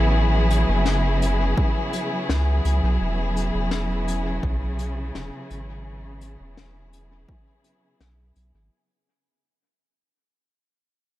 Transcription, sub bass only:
0.00 0.65 A1 medium
0.69 1.54 F#1 loud
2.29 2.61 C#2 medium
2.65 2.81 C#2 medium
2.83 2.98 B1 loud
3.01 3.51 E1 loud
3.54 4.40 E1 loud
4.43 5.11 B1 medium
5.15 5.31 E1 loud
5.50 6.37 G#1 medium
6.40 7.26 E1 loud
8.00 8.32 B1 medium
8.36 8.52 B1 medium
8.54 8.70 G#1 loud

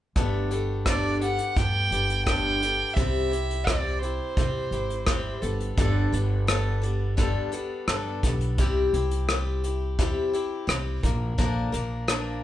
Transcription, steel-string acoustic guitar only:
0.16 0.51 G2 medium
0.16 0.52 D3 medium
0.16 0.52 A3 medium
0.16 0.51 B3 medium
0.16 0.50 D4 medium
0.16 0.50 G4 medium
0.51 0.85 A3 soft
0.51 0.86 B3 soft
0.51 0.86 D4 medium
0.51 0.86 G4 medium
0.86 1.21 G2 medium
0.86 1.21 D3 medium
0.86 1.22 A3 medium
0.86 1.21 B3 medium
0.86 1.21 D4 medium
0.86 1.20 G4 medium
1.21 1.55 A3 soft
1.21 1.55 B3 soft
1.21 1.56 D4 soft
1.21 1.57 G4 soft
1.56 1.92 A3 soft
1.56 1.92 B3 medium
1.56 1.91 D4 medium
1.56 1.90 G4 medium
1.92 2.26 A3 soft
1.92 2.26 B3 soft
1.92 2.26 D4 soft
1.92 2.27 G4 soft
2.26 2.62 G2 medium
2.26 2.62 D3 medium
2.26 2.62 A3 medium
2.26 2.62 B3 medium
2.26 2.62 D4 medium
2.26 2.61 G4 medium
2.62 2.96 A3 soft
2.62 2.96 B3 soft
2.62 2.97 D4 soft
2.62 2.97 G4 soft
2.96 3.32 C3 medium
2.96 3.32 G3 medium
2.96 3.32 C4 medium
2.96 3.31 E4 medium
2.96 3.30 G4 medium
3.31 3.68 C4 soft
3.31 3.68 E4 soft
3.31 3.67 G4 soft
3.67 4.03 C3 medium
3.67 4.03 G3 medium
3.67 4.03 C4 medium
3.67 4.02 E4 medium
3.67 4.01 G4 medium
4.02 4.37 C4 soft
4.02 4.37 E4 soft
4.02 4.37 G4 soft
4.37 4.72 G3 soft
4.37 4.73 C4 medium
4.37 4.72 E4 medium
4.37 4.71 G4 medium
4.72 5.07 C4 soft
4.72 5.07 E4 soft
4.72 5.07 G4 soft
5.07 5.43 C3 medium
5.07 5.43 G3 medium
5.07 5.43 C4 medium
5.07 5.42 E4 medium
5.07 5.41 G4 medium
5.42 5.77 G3 soft
5.42 5.77 B3 soft
5.42 5.78 D4 soft
5.42 5.77 A4 soft
5.77 6.13 G2 medium
5.77 6.13 D3 medium
5.77 6.13 G3 medium
5.77 6.12 B3 medium
5.77 6.12 D4 medium
5.77 6.11 A4 medium
6.12 6.46 G3 soft
6.12 6.47 B3 soft
6.12 6.48 D4 medium
6.12 6.48 A4 soft
6.47 6.83 G3 medium
6.47 6.82 B3 medium
6.47 6.82 D4 medium
6.47 6.80 A4 medium
6.82 7.17 G3 soft
6.82 7.17 B3 soft
6.82 7.17 D4 medium
6.82 7.18 A4 medium
7.17 7.53 G2 medium
7.17 7.53 D3 medium
7.17 7.53 G3 medium
7.17 7.52 B3 medium
7.17 7.52 D4 medium
7.17 7.50 A4 medium
7.52 7.87 G3 medium
7.52 7.87 B3 soft
7.52 7.88 D4 medium
7.52 7.88 A4 medium
7.88 8.23 G3 medium
7.88 8.23 B3 medium
7.88 8.22 D4 medium
7.88 8.22 A4 medium
8.23 8.57 G3 soft
8.23 8.59 B3 soft
8.23 8.59 D4 soft
8.23 8.58 A4 medium
8.58 8.93 C3 medium
8.58 8.94 G3 medium
8.58 8.94 C4 medium
8.58 8.93 E4 medium
8.58 8.93 G4 medium
8.94 9.29 C4 soft
8.94 9.29 E4 soft
8.94 9.29 G4 medium
9.29 9.64 G3 medium
9.29 9.64 C4 medium
9.29 9.63 E4 medium
9.29 9.62 G4 medium
9.64 9.98 C4 soft
9.64 9.99 E4 soft
9.64 9.99 G4 medium
9.99 10.34 C3 medium
9.99 10.34 G3 medium
9.99 10.34 C4 medium
9.99 10.33 E4 medium
9.99 10.32 G4 medium
10.33 10.67 C4 soft
10.33 10.68 E4 medium
10.33 10.68 G4 medium
10.67 11.03 G3 medium
10.67 11.03 C4 medium
10.67 11.03 E4 medium
10.67 11.03 G4 medium
11.03 11.38 F3 soft
11.03 11.38 A#3 soft
11.03 11.38 D4 medium
11.03 11.38 A#4 medium
11.38 11.73 A#2 medium
11.38 11.73 D3 medium
11.38 11.73 F3 medium
11.38 11.73 A#3 medium
11.38 11.72 D4 medium
11.38 11.71 A#4 medium
11.72 12.06 F3 soft
11.72 12.07 A#3 medium
11.72 12.08 D4 medium
11.72 12.08 A#4 medium
12.08 12.43 F3 medium
12.08 12.43 A#3 medium
12.08 12.42 D4 medium
12.08 12.42 A#4 medium

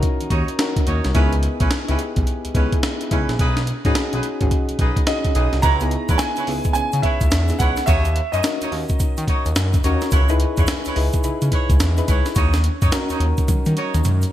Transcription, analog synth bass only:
0.21 0.25 D#2 soft
0.30 0.43 D#2 loud
0.88 1.00 D#2 medium
1.05 1.13 C2 loud
1.15 1.48 C#2 loud
1.60 1.68 B1 medium
1.89 1.96 C#2 medium
2.17 2.24 B1 medium
2.45 2.49 C#2 soft
2.55 2.68 C#2 medium
3.12 3.24 C#2 medium
3.29 3.36 A#1 loud
3.39 3.72 B1 loud
3.85 3.92 G#1 medium
4.13 4.21 B1 medium
4.41 4.48 G#1 loud
4.70 4.74 B1 soft
4.79 4.92 B1 medium
5.36 5.48 B1 loud
5.53 5.61 C2 medium
5.63 5.96 C#2 loud
6.09 6.17 E2 medium
6.38 6.42 C#2 soft
6.47 6.60 C#2 medium
6.75 6.83 C#3 soft
6.93 7.01 C#3 medium
7.21 7.29 C#2 medium
7.31 7.52 E2 medium
7.60 7.73 C#2 loud
7.88 8.21 D#2 loud
8.33 8.41 F#2 medium
8.61 8.65 D#2 soft
8.72 8.85 D#2 loud
9.00 9.07 D#3 soft
9.18 9.25 D#3 loud
9.46 9.53 D#2 medium
9.56 9.76 F#2 medium
9.84 9.97 D#2 medium
10.12 10.45 C#2 loud
10.58 10.65 E2 loud
10.86 10.90 C#2 medium
10.96 11.09 C#2 medium
11.24 11.31 C#3 soft
11.42 11.49 C#3 medium
11.70 11.77 C#2 medium
11.81 12.01 E2 loud
12.09 12.21 C#2 medium
12.36 12.69 D#2 loud
12.82 12.90 F#2 medium
13.10 13.14 D#2 soft
13.20 13.33 D#2 loud
13.49 13.56 D#3 soft
13.67 13.74 D#3 loud
13.94 14.02 D#2 loud
14.05 14.25 F#2 medium

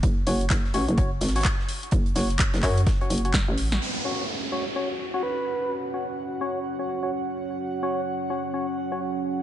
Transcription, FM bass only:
0.03 0.25 F#1 loud
0.27 0.49 F#1 loud
0.50 0.73 F#1 loud
0.74 0.86 A1 medium
0.89 1.20 F#1 loud
1.21 1.44 G#1 loud
1.92 2.14 F#1 loud
2.16 2.52 F#1 loud
2.54 2.62 F#1 loud
2.63 2.85 F#2 loud
3.10 3.46 F#1 medium
3.48 3.80 A1 loud

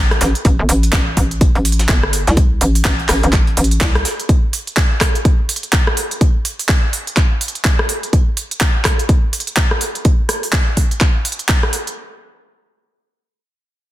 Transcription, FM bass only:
0.00 0.19 A1 medium
0.21 0.33 A1 loud
0.45 0.57 A1 medium
0.59 0.67 G1 loud
0.69 0.91 A1 medium
0.93 1.15 A1 medium
1.17 1.53 A1 medium
1.55 1.87 A1 medium
1.89 2.25 G1 loud
2.27 2.60 C2 medium
2.61 2.83 A1 medium
2.85 3.07 A1 medium
3.09 3.21 A1 medium
3.23 3.56 A1 medium
3.57 3.80 A1 medium
3.81 4.03 C2 loud

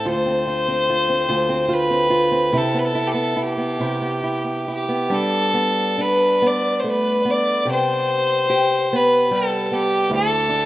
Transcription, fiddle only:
0.10 1.75 C5 loud
1.74 2.58 B4 medium
2.57 2.80 A4 medium
2.79 2.86 B4 medium
2.84 3.09 A4 medium
3.07 3.14 G4 medium
3.12 3.43 A4 medium
3.42 4.72 G4 medium
4.74 5.16 G4 medium
5.14 6.02 A4 loud
6.01 6.48 B4 medium
6.46 6.81 D5 medium
6.79 6.91 C5 medium
6.89 7.32 B4 medium
7.30 7.69 D5 medium
7.71 8.97 C5 loud
8.96 9.37 B4 medium
9.35 9.65 A4 medium
9.65 9.75 A4 medium
9.73 10.11 G4 medium
10.14 10.65 A4 loud

